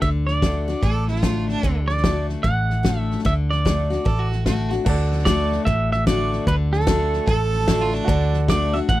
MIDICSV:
0, 0, Header, 1, 7, 480
1, 0, Start_track
1, 0, Key_signature, 2, "major"
1, 0, Tempo, 403226
1, 21, Time_signature, 4, 2, 24, 8
1, 10714, End_track
2, 0, Start_track
2, 0, Title_t, "Pedal steel guitar"
2, 0, Program_c, 0, 26
2, 21, Note_on_c, 0, 76, 96
2, 103, Note_off_c, 0, 76, 0
2, 316, Note_on_c, 0, 74, 71
2, 1235, Note_off_c, 0, 74, 0
2, 2233, Note_on_c, 0, 74, 83
2, 2687, Note_off_c, 0, 74, 0
2, 2894, Note_on_c, 0, 78, 100
2, 3561, Note_off_c, 0, 78, 0
2, 3561, Note_on_c, 0, 76, 100
2, 3813, Note_off_c, 0, 76, 0
2, 3882, Note_on_c, 0, 76, 90
2, 3962, Note_off_c, 0, 76, 0
2, 4172, Note_on_c, 0, 74, 75
2, 5084, Note_off_c, 0, 74, 0
2, 6253, Note_on_c, 0, 74, 101
2, 6724, Note_off_c, 0, 74, 0
2, 6729, Note_on_c, 0, 76, 106
2, 7020, Note_off_c, 0, 76, 0
2, 7053, Note_on_c, 0, 76, 95
2, 7221, Note_off_c, 0, 76, 0
2, 7226, Note_on_c, 0, 74, 95
2, 7710, Note_on_c, 0, 71, 96
2, 7720, Note_off_c, 0, 74, 0
2, 7792, Note_off_c, 0, 71, 0
2, 8008, Note_on_c, 0, 69, 80
2, 9399, Note_off_c, 0, 69, 0
2, 10115, Note_on_c, 0, 74, 93
2, 10399, Note_on_c, 0, 76, 88
2, 10421, Note_off_c, 0, 74, 0
2, 10458, Note_off_c, 0, 76, 0
2, 10582, Note_on_c, 0, 78, 106
2, 10714, Note_off_c, 0, 78, 0
2, 10714, End_track
3, 0, Start_track
3, 0, Title_t, "Grand piano"
3, 0, Program_c, 1, 0
3, 5771, Note_on_c, 1, 66, 68
3, 5793, Note_on_c, 1, 69, 66
3, 5820, Note_on_c, 1, 74, 85
3, 9558, Note_off_c, 1, 66, 0
3, 9576, Note_on_c, 1, 66, 77
3, 9579, Note_off_c, 1, 69, 0
3, 9592, Note_off_c, 1, 74, 0
3, 9607, Note_on_c, 1, 69, 64
3, 9628, Note_on_c, 1, 74, 77
3, 10714, Note_off_c, 1, 66, 0
3, 10714, Note_off_c, 1, 69, 0
3, 10714, Note_off_c, 1, 74, 0
3, 10714, End_track
4, 0, Start_track
4, 0, Title_t, "Fiddle"
4, 0, Program_c, 2, 110
4, 977, Note_on_c, 2, 69, 76
4, 1291, Note_off_c, 2, 69, 0
4, 1301, Note_on_c, 2, 65, 77
4, 1769, Note_off_c, 2, 65, 0
4, 1785, Note_on_c, 2, 62, 96
4, 2088, Note_off_c, 2, 62, 0
4, 4821, Note_on_c, 2, 69, 75
4, 4998, Note_on_c, 2, 66, 75
4, 5016, Note_off_c, 2, 69, 0
4, 5299, Note_off_c, 2, 66, 0
4, 5306, Note_on_c, 2, 66, 77
4, 5601, Note_off_c, 2, 66, 0
4, 8649, Note_on_c, 2, 69, 97
4, 9302, Note_on_c, 2, 65, 85
4, 9320, Note_off_c, 2, 69, 0
4, 9454, Note_on_c, 2, 62, 99
4, 9472, Note_off_c, 2, 65, 0
4, 9924, Note_off_c, 2, 62, 0
4, 10714, End_track
5, 0, Start_track
5, 0, Title_t, "Steel-string acoustic guitar"
5, 0, Program_c, 3, 25
5, 23, Note_on_c, 3, 50, 83
5, 492, Note_off_c, 3, 50, 0
5, 506, Note_on_c, 3, 50, 54
5, 519, Note_on_c, 3, 57, 60
5, 524, Note_on_c, 3, 62, 63
5, 533, Note_on_c, 3, 66, 61
5, 793, Note_off_c, 3, 66, 0
5, 796, Note_off_c, 3, 50, 0
5, 803, Note_off_c, 3, 57, 0
5, 806, Note_off_c, 3, 62, 0
5, 807, Note_on_c, 3, 66, 51
5, 828, Note_on_c, 3, 62, 42
5, 976, Note_off_c, 3, 66, 0
5, 987, Note_off_c, 3, 62, 0
5, 989, Note_on_c, 3, 45, 73
5, 1456, Note_on_c, 3, 50, 49
5, 1470, Note_on_c, 3, 57, 49
5, 1477, Note_on_c, 3, 66, 50
5, 1481, Note_on_c, 3, 62, 56
5, 1912, Note_off_c, 3, 45, 0
5, 1923, Note_off_c, 3, 50, 0
5, 1930, Note_off_c, 3, 57, 0
5, 1934, Note_off_c, 3, 66, 0
5, 1935, Note_off_c, 3, 62, 0
5, 1954, Note_on_c, 3, 50, 86
5, 2411, Note_off_c, 3, 50, 0
5, 2425, Note_on_c, 3, 50, 53
5, 2435, Note_on_c, 3, 57, 60
5, 2442, Note_on_c, 3, 62, 58
5, 2446, Note_on_c, 3, 66, 61
5, 2888, Note_off_c, 3, 50, 0
5, 2893, Note_off_c, 3, 57, 0
5, 2896, Note_off_c, 3, 62, 0
5, 2899, Note_off_c, 3, 66, 0
5, 2906, Note_on_c, 3, 45, 70
5, 3370, Note_on_c, 3, 50, 47
5, 3384, Note_on_c, 3, 57, 55
5, 3389, Note_on_c, 3, 62, 58
5, 3399, Note_on_c, 3, 66, 52
5, 3832, Note_off_c, 3, 45, 0
5, 3841, Note_off_c, 3, 50, 0
5, 3848, Note_off_c, 3, 57, 0
5, 3851, Note_off_c, 3, 62, 0
5, 3855, Note_off_c, 3, 66, 0
5, 3866, Note_on_c, 3, 50, 82
5, 4331, Note_off_c, 3, 50, 0
5, 4345, Note_on_c, 3, 50, 58
5, 4357, Note_on_c, 3, 57, 55
5, 4363, Note_on_c, 3, 62, 56
5, 4367, Note_on_c, 3, 66, 65
5, 4631, Note_off_c, 3, 66, 0
5, 4638, Note_off_c, 3, 50, 0
5, 4644, Note_off_c, 3, 57, 0
5, 4645, Note_on_c, 3, 66, 47
5, 4647, Note_off_c, 3, 62, 0
5, 4665, Note_on_c, 3, 62, 37
5, 4818, Note_off_c, 3, 66, 0
5, 4823, Note_on_c, 3, 45, 64
5, 4827, Note_off_c, 3, 62, 0
5, 5311, Note_on_c, 3, 50, 50
5, 5319, Note_on_c, 3, 57, 58
5, 5322, Note_on_c, 3, 62, 56
5, 5330, Note_on_c, 3, 66, 54
5, 5588, Note_off_c, 3, 66, 0
5, 5601, Note_off_c, 3, 50, 0
5, 5602, Note_on_c, 3, 66, 53
5, 5605, Note_off_c, 3, 57, 0
5, 5606, Note_off_c, 3, 62, 0
5, 5627, Note_on_c, 3, 62, 46
5, 5750, Note_off_c, 3, 45, 0
5, 5776, Note_off_c, 3, 66, 0
5, 5788, Note_off_c, 3, 62, 0
5, 5791, Note_on_c, 3, 50, 84
5, 6242, Note_off_c, 3, 50, 0
5, 6256, Note_on_c, 3, 50, 77
5, 6273, Note_on_c, 3, 57, 87
5, 6275, Note_on_c, 3, 62, 81
5, 6285, Note_on_c, 3, 66, 93
5, 6724, Note_off_c, 3, 50, 0
5, 6732, Note_off_c, 3, 57, 0
5, 6733, Note_off_c, 3, 62, 0
5, 6738, Note_off_c, 3, 66, 0
5, 6754, Note_on_c, 3, 45, 77
5, 7223, Note_on_c, 3, 50, 84
5, 7239, Note_on_c, 3, 57, 77
5, 7239, Note_on_c, 3, 62, 73
5, 7248, Note_on_c, 3, 66, 88
5, 7675, Note_off_c, 3, 45, 0
5, 7687, Note_off_c, 3, 50, 0
5, 7695, Note_off_c, 3, 57, 0
5, 7695, Note_off_c, 3, 62, 0
5, 7699, Note_off_c, 3, 66, 0
5, 7716, Note_on_c, 3, 50, 92
5, 8162, Note_off_c, 3, 50, 0
5, 8176, Note_on_c, 3, 50, 91
5, 8189, Note_on_c, 3, 57, 76
5, 8194, Note_on_c, 3, 62, 93
5, 8195, Note_on_c, 3, 66, 97
5, 8643, Note_off_c, 3, 50, 0
5, 8649, Note_off_c, 3, 57, 0
5, 8652, Note_off_c, 3, 62, 0
5, 8652, Note_off_c, 3, 66, 0
5, 8674, Note_on_c, 3, 45, 70
5, 9139, Note_on_c, 3, 50, 79
5, 9143, Note_on_c, 3, 57, 73
5, 9155, Note_on_c, 3, 62, 75
5, 9160, Note_on_c, 3, 66, 88
5, 9593, Note_off_c, 3, 45, 0
5, 9603, Note_off_c, 3, 50, 0
5, 9605, Note_off_c, 3, 57, 0
5, 9612, Note_off_c, 3, 62, 0
5, 9614, Note_off_c, 3, 66, 0
5, 9628, Note_on_c, 3, 50, 98
5, 10095, Note_off_c, 3, 50, 0
5, 10110, Note_on_c, 3, 50, 83
5, 10121, Note_on_c, 3, 57, 82
5, 10134, Note_on_c, 3, 62, 102
5, 10140, Note_on_c, 3, 66, 98
5, 10383, Note_off_c, 3, 66, 0
5, 10397, Note_off_c, 3, 50, 0
5, 10397, Note_on_c, 3, 66, 56
5, 10403, Note_off_c, 3, 57, 0
5, 10410, Note_off_c, 3, 62, 0
5, 10422, Note_on_c, 3, 62, 45
5, 10570, Note_off_c, 3, 66, 0
5, 10583, Note_off_c, 3, 62, 0
5, 10585, Note_on_c, 3, 45, 83
5, 10714, Note_off_c, 3, 45, 0
5, 10714, End_track
6, 0, Start_track
6, 0, Title_t, "Fingered electric bass"
6, 0, Program_c, 4, 33
6, 22, Note_on_c, 4, 38, 87
6, 876, Note_off_c, 4, 38, 0
6, 986, Note_on_c, 4, 33, 69
6, 1839, Note_off_c, 4, 33, 0
6, 1940, Note_on_c, 4, 38, 86
6, 2796, Note_off_c, 4, 38, 0
6, 2905, Note_on_c, 4, 33, 73
6, 3759, Note_off_c, 4, 33, 0
6, 3867, Note_on_c, 4, 38, 88
6, 4721, Note_off_c, 4, 38, 0
6, 4832, Note_on_c, 4, 33, 75
6, 5683, Note_off_c, 4, 33, 0
6, 5782, Note_on_c, 4, 38, 83
6, 6637, Note_off_c, 4, 38, 0
6, 6739, Note_on_c, 4, 33, 70
6, 7595, Note_off_c, 4, 33, 0
6, 7701, Note_on_c, 4, 38, 85
6, 8555, Note_off_c, 4, 38, 0
6, 8658, Note_on_c, 4, 33, 73
6, 9513, Note_off_c, 4, 33, 0
6, 9613, Note_on_c, 4, 38, 94
6, 10469, Note_off_c, 4, 38, 0
6, 10580, Note_on_c, 4, 33, 73
6, 10714, Note_off_c, 4, 33, 0
6, 10714, End_track
7, 0, Start_track
7, 0, Title_t, "Drums"
7, 24, Note_on_c, 9, 36, 89
7, 24, Note_on_c, 9, 38, 29
7, 143, Note_off_c, 9, 36, 0
7, 143, Note_off_c, 9, 38, 0
7, 327, Note_on_c, 9, 38, 35
7, 446, Note_off_c, 9, 38, 0
7, 504, Note_on_c, 9, 36, 87
7, 504, Note_on_c, 9, 38, 102
7, 504, Note_on_c, 9, 44, 77
7, 623, Note_off_c, 9, 36, 0
7, 623, Note_off_c, 9, 38, 0
7, 623, Note_off_c, 9, 44, 0
7, 806, Note_on_c, 9, 38, 32
7, 925, Note_off_c, 9, 38, 0
7, 977, Note_on_c, 9, 38, 30
7, 983, Note_on_c, 9, 36, 91
7, 1096, Note_off_c, 9, 38, 0
7, 1102, Note_off_c, 9, 36, 0
7, 1281, Note_on_c, 9, 38, 31
7, 1376, Note_off_c, 9, 38, 0
7, 1376, Note_on_c, 9, 38, 31
7, 1463, Note_off_c, 9, 38, 0
7, 1463, Note_on_c, 9, 38, 100
7, 1463, Note_on_c, 9, 44, 83
7, 1464, Note_on_c, 9, 36, 75
7, 1582, Note_off_c, 9, 38, 0
7, 1582, Note_off_c, 9, 44, 0
7, 1583, Note_off_c, 9, 36, 0
7, 1768, Note_on_c, 9, 38, 31
7, 1887, Note_off_c, 9, 38, 0
7, 1940, Note_on_c, 9, 38, 32
7, 1944, Note_on_c, 9, 36, 97
7, 2059, Note_off_c, 9, 38, 0
7, 2063, Note_off_c, 9, 36, 0
7, 2246, Note_on_c, 9, 38, 34
7, 2343, Note_off_c, 9, 38, 0
7, 2343, Note_on_c, 9, 38, 31
7, 2425, Note_off_c, 9, 38, 0
7, 2425, Note_on_c, 9, 38, 111
7, 2425, Note_on_c, 9, 44, 83
7, 2426, Note_on_c, 9, 36, 85
7, 2544, Note_off_c, 9, 38, 0
7, 2544, Note_off_c, 9, 44, 0
7, 2545, Note_off_c, 9, 36, 0
7, 2724, Note_on_c, 9, 38, 31
7, 2843, Note_off_c, 9, 38, 0
7, 2899, Note_on_c, 9, 38, 29
7, 2906, Note_on_c, 9, 36, 96
7, 3018, Note_off_c, 9, 38, 0
7, 3026, Note_off_c, 9, 36, 0
7, 3211, Note_on_c, 9, 38, 30
7, 3330, Note_off_c, 9, 38, 0
7, 3388, Note_on_c, 9, 38, 100
7, 3388, Note_on_c, 9, 44, 81
7, 3390, Note_on_c, 9, 36, 78
7, 3507, Note_off_c, 9, 38, 0
7, 3507, Note_off_c, 9, 44, 0
7, 3509, Note_off_c, 9, 36, 0
7, 3702, Note_on_c, 9, 38, 30
7, 3792, Note_off_c, 9, 38, 0
7, 3792, Note_on_c, 9, 38, 30
7, 3870, Note_off_c, 9, 38, 0
7, 3870, Note_on_c, 9, 38, 32
7, 3871, Note_on_c, 9, 36, 92
7, 3989, Note_off_c, 9, 38, 0
7, 3990, Note_off_c, 9, 36, 0
7, 4181, Note_on_c, 9, 38, 34
7, 4300, Note_off_c, 9, 38, 0
7, 4353, Note_on_c, 9, 36, 81
7, 4361, Note_on_c, 9, 38, 98
7, 4361, Note_on_c, 9, 44, 84
7, 4472, Note_off_c, 9, 36, 0
7, 4480, Note_off_c, 9, 38, 0
7, 4480, Note_off_c, 9, 44, 0
7, 4664, Note_on_c, 9, 38, 30
7, 4784, Note_off_c, 9, 38, 0
7, 4832, Note_on_c, 9, 36, 99
7, 4833, Note_on_c, 9, 38, 30
7, 4951, Note_off_c, 9, 36, 0
7, 4952, Note_off_c, 9, 38, 0
7, 5140, Note_on_c, 9, 38, 32
7, 5259, Note_off_c, 9, 38, 0
7, 5307, Note_on_c, 9, 38, 95
7, 5307, Note_on_c, 9, 44, 76
7, 5310, Note_on_c, 9, 36, 73
7, 5426, Note_off_c, 9, 38, 0
7, 5426, Note_off_c, 9, 44, 0
7, 5429, Note_off_c, 9, 36, 0
7, 5615, Note_on_c, 9, 38, 29
7, 5734, Note_off_c, 9, 38, 0
7, 5784, Note_on_c, 9, 38, 29
7, 5784, Note_on_c, 9, 49, 94
7, 5787, Note_on_c, 9, 36, 107
7, 5903, Note_off_c, 9, 38, 0
7, 5903, Note_off_c, 9, 49, 0
7, 5906, Note_off_c, 9, 36, 0
7, 6094, Note_on_c, 9, 38, 36
7, 6172, Note_off_c, 9, 38, 0
7, 6172, Note_on_c, 9, 38, 30
7, 6263, Note_off_c, 9, 38, 0
7, 6263, Note_on_c, 9, 38, 114
7, 6263, Note_on_c, 9, 44, 97
7, 6265, Note_on_c, 9, 36, 85
7, 6382, Note_off_c, 9, 38, 0
7, 6382, Note_off_c, 9, 44, 0
7, 6384, Note_off_c, 9, 36, 0
7, 6570, Note_on_c, 9, 38, 36
7, 6689, Note_off_c, 9, 38, 0
7, 6740, Note_on_c, 9, 38, 33
7, 6745, Note_on_c, 9, 36, 105
7, 6859, Note_off_c, 9, 38, 0
7, 6864, Note_off_c, 9, 36, 0
7, 7048, Note_on_c, 9, 38, 32
7, 7167, Note_off_c, 9, 38, 0
7, 7224, Note_on_c, 9, 38, 110
7, 7224, Note_on_c, 9, 44, 83
7, 7225, Note_on_c, 9, 36, 83
7, 7343, Note_off_c, 9, 38, 0
7, 7343, Note_off_c, 9, 44, 0
7, 7344, Note_off_c, 9, 36, 0
7, 7528, Note_on_c, 9, 38, 29
7, 7647, Note_off_c, 9, 38, 0
7, 7694, Note_on_c, 9, 38, 34
7, 7702, Note_on_c, 9, 36, 101
7, 7813, Note_off_c, 9, 38, 0
7, 7821, Note_off_c, 9, 36, 0
7, 8008, Note_on_c, 9, 38, 36
7, 8095, Note_off_c, 9, 38, 0
7, 8095, Note_on_c, 9, 38, 33
7, 8178, Note_off_c, 9, 38, 0
7, 8178, Note_on_c, 9, 38, 124
7, 8178, Note_on_c, 9, 44, 90
7, 8182, Note_on_c, 9, 36, 90
7, 8297, Note_off_c, 9, 38, 0
7, 8297, Note_off_c, 9, 44, 0
7, 8301, Note_off_c, 9, 36, 0
7, 8488, Note_on_c, 9, 38, 35
7, 8607, Note_off_c, 9, 38, 0
7, 8658, Note_on_c, 9, 38, 30
7, 8661, Note_on_c, 9, 36, 110
7, 8777, Note_off_c, 9, 38, 0
7, 8780, Note_off_c, 9, 36, 0
7, 8962, Note_on_c, 9, 38, 32
7, 9050, Note_off_c, 9, 38, 0
7, 9050, Note_on_c, 9, 38, 32
7, 9137, Note_off_c, 9, 38, 0
7, 9137, Note_on_c, 9, 38, 113
7, 9137, Note_on_c, 9, 44, 87
7, 9140, Note_on_c, 9, 36, 87
7, 9256, Note_off_c, 9, 38, 0
7, 9256, Note_off_c, 9, 44, 0
7, 9259, Note_off_c, 9, 36, 0
7, 9444, Note_on_c, 9, 38, 31
7, 9563, Note_off_c, 9, 38, 0
7, 9610, Note_on_c, 9, 38, 31
7, 9617, Note_on_c, 9, 36, 103
7, 9729, Note_off_c, 9, 38, 0
7, 9736, Note_off_c, 9, 36, 0
7, 9919, Note_on_c, 9, 38, 37
7, 10038, Note_off_c, 9, 38, 0
7, 10100, Note_on_c, 9, 36, 90
7, 10102, Note_on_c, 9, 38, 117
7, 10102, Note_on_c, 9, 44, 98
7, 10219, Note_off_c, 9, 36, 0
7, 10221, Note_off_c, 9, 38, 0
7, 10221, Note_off_c, 9, 44, 0
7, 10406, Note_on_c, 9, 38, 37
7, 10525, Note_off_c, 9, 38, 0
7, 10574, Note_on_c, 9, 38, 34
7, 10580, Note_on_c, 9, 36, 108
7, 10693, Note_off_c, 9, 38, 0
7, 10699, Note_off_c, 9, 36, 0
7, 10714, End_track
0, 0, End_of_file